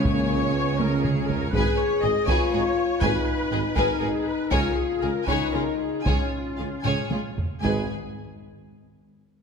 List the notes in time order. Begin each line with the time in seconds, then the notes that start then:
Already playing: C#2 C#3 G#4 C#5 G#5
0.04 A#3 C#5, taiko
0.54 B3
0.76 C#4 A#4, taiko high
1.03 G#4, taiko mid
1.27 A#4, taiko low
1.53 G#1 G#2 G#4 B4 G#5, taiko
1.77 C#5
2.02 G#1 G#2 G#4 D#5
2.27 G#1 G#2 F4 G#4 B4 C#5 G#5, taiko
2.51 G#1 G#2 D#4 G#4 B4
3.01 G#1 G#2 D#4 G#4 B4 G#5, taiko
3.51 G#1 G#2 G#4 D#5
3.76 G#1 G#2 D#4 G#4 A#4 B4 G#5, taiko
4.00 G#1 G#2 D#4 G#4 B4
4.25 B4
4.51 C#2 C#3 F4 G#4 A#4 C#5 G#5, taiko
4.76 G#4
5.02 C#2 C#3 G#4 A#4 F5
5.26 C#2 C#3 D#4 G#4 B4 C#5 G#5, taiko
5.52 C#2 C#3 F4 G#4 A#4 C#5
5.79 G#4
6.03 C#2 C#3 C#4 F4 G#4 C#5 G#5, taiko
6.56 C#2 C#3 G#4 F5
6.83 C#2 C#3 G#4 C#5 G#5, taiko low-mid
7.10 C#2 C#3 F4 G#4 C#5, taiko high
7.38 taiko low
7.62 G#1 G#2 G#3 G#4 B4 G#5, taiko